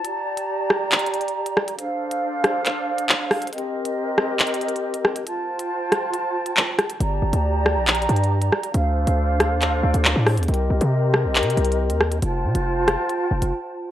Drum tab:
HH |x-----------------x-----------------------------x---x---x---x---x---x---------x-----------x-----|x-----------------x-----------------x-----------x-----------------x-----------------o-----x--x--|x--x--------------x-----------------------------x---x---x---x---x---x---------x-----------x-----|x-----------------x-----------------x-----------x-----------------x-----------------x-----x-----|
CP |------------------------------------------------x-----------------------------------------------|------------------------------------------------x-----------------------x-----------------------|------------------------------------------------x-----------------------------------------------|------------------------------------------------------------------------x-----------------------|
SD |------------------------------------r-----------------------------------------------r-----------|------------------------------------r-----------------------------------------------r-----------|------------------------------------r-----------------------------------------------r-----------|------------------------------------r-----------------------------------------------r-----------|

HH |x-----------------x-----------------------------x---x---x---x---x---x---------x-----------x-----|x-----------------x-----------------x-----------x-----------------x-----------------o-----x--x--|x--x--------------x-----------------------------x---x---x---x---x---x---------x-----------x-----|x-----------------x-----------------x-----------x-----------------x-----------------------------|
CP |------------------------------------------------x-----------------------------------------------|------------------------------------------------x-----------------------x-----------------------|------------------------------------------------x-----------------------------------------------|------------------------------------------------------------------------------------------------|
SD |------------------------------------r-----------------------------------------------r-----------|------------------------------------r-----------------------------------------------r-----------|------------------------------------r-----------------------------------------------r-----------|------------------------------------r-----------------------------------------------------------|